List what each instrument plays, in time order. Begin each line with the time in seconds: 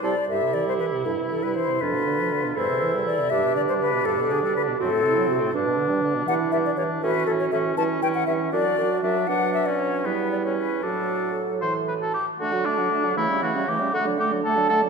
0.03 bassoon C3, french horn G3, clarinet E4, oboe A4, flute D5
0.29 bassoon C2, french horn G2, oboe E4, clarinet G4, flute E5
0.42 french horn C3
0.54 french horn E3, flute D5
0.66 french horn G3, flute C5
0.79 french horn E3, flute B4
0.93 french horn C3
1.05 bassoon G2, french horn G2, clarinet E4, flute A4
1.18 french horn C3
1.30 french horn E3, flute A4
1.43 french horn G3, flute B4
1.54 french horn E3, flute C5
1.69 french horn C3
1.81 bassoon D2, french horn F2, clarinet D4, oboe F4, flute B4
1.94 french horn B2
2.06 french horn D3
2.19 french horn F3
2.32 french horn D3
2.44 french horn B2
2.56 bassoon E2, french horn G2, oboe E4, clarinet A4, flute C5
2.69 french horn C3
2.82 french horn E3
2.94 french horn G3
3.06 french horn E3, flute D5
3.19 french horn C3
3.30 bassoon G2, french horn G2, oboe D4, clarinet G4, flute E5
3.44 french horn B2
3.56 french horn D3, flute D5
3.68 french horn G3, flute C5
3.80 french horn D3, flute B4
3.93 french horn B2
4.05 bassoon D2, french horn G2, flute A4
4.18 french horn B2
4.31 french horn D3, flute G#4
4.43 french horn G3, flute A4
4.55 french horn D3, flute B4
4.68 french horn B2
4.80 french horn F#2, bassoon A2, oboe C4, clarinet F#4, flute A4
4.92 french horn A2
5.04 french horn C3, clarinet E4
5.16 french horn F#3
5.28 french horn C3, clarinet F#4
5.41 french horn A2
5.53 french horn G2, bassoon B2, clarinet D4, oboe D4
5.65 french horn B2
5.78 french horn D3
5.90 french horn G3
6.02 french horn D3
6.15 french horn B2
6.26 bassoon G2, french horn E3, oboe D4, clarinet E4, flute F#5
6.51 bassoon G2, french horn E3, oboe D4, flute E5
6.66 flute D5
6.76 bassoon G2, french horn E3, oboe D4, flute C#5
7.02 bassoon A2, french horn E3, oboe C#4, clarinet F#4, flute B4
7.26 bassoon A2, french horn E3, oboe C#4, flute A4
7.40 flute C#5
7.51 bassoon A2, french horn E3, oboe C#4, flute E5
7.76 bassoon G2, french horn E3, oboe C#4, clarinet E4, flute A5
8.02 bassoon G2, french horn E3, oboe C#4, flute G5
8.15 flute F#5
8.27 bassoon G2, french horn E3, oboe C#4, flute E5
8.52 bassoon F#2, french horn F#3, oboe D4, clarinet F#4, flute D5
8.78 bassoon F#2, french horn F#3, oboe D4
9.02 bassoon F#2, french horn F#3, oboe D4, flute E5
9.27 bassoon B2, french horn F#3, clarinet D4, oboe D4, flute F#5
9.54 flute E5
9.66 oboe C#4, flute D5
9.79 flute C#5
10.05 bassoon E2, french horn G3, oboe B3, clarinet E4, flute B4
10.31 flute D5
10.44 oboe C#4, flute C#5
10.57 flute B4
10.83 bassoon A2, french horn F#3, oboe D4, clarinet F#4, flute A4
11.62 bassoon A2, french horn E3, oboe C5
11.88 oboe B4
12.01 oboe A4
12.14 oboe G4
12.39 bassoon D3, french horn A3, clarinet D4, oboe F#4, flute A5
12.52 french horn F#3, clarinet F#4, flute F#5
12.65 french horn A3, oboe D4, clarinet D4, flute A5
12.78 french horn F#3, clarinet F#4, flute F#5
12.91 french horn A3, clarinet D4, flute A5
13.04 french horn F#3, clarinet F#4, flute F#5
13.17 bassoon C#3, french horn E3, clarinet A3, oboe E4, flute C#5
13.29 french horn G3, clarinet C#4, flute E5
13.42 french horn E3, clarinet A3, oboe F#4, flute C#5
13.55 french horn G3, clarinet C#4, flute E5
13.67 french horn E3, clarinet A3, oboe G4, flute C#5
13.79 french horn G3, clarinet C#4, flute E5
13.92 bassoon D3, french horn A3, clarinet A3, oboe F#4, flute F#5
14.05 french horn F#3, clarinet D4, flute D5
14.18 french horn A3, clarinet A3, oboe G4, flute F#5
14.31 french horn F#3, clarinet D4, flute D5
14.44 french horn A3, clarinet A3, oboe A4, flute F#5
14.57 french horn F#3, clarinet D4, flute D5
14.69 french horn A3, clarinet A3, oboe A4, flute F#5
14.82 french horn F#3, clarinet D4, flute D5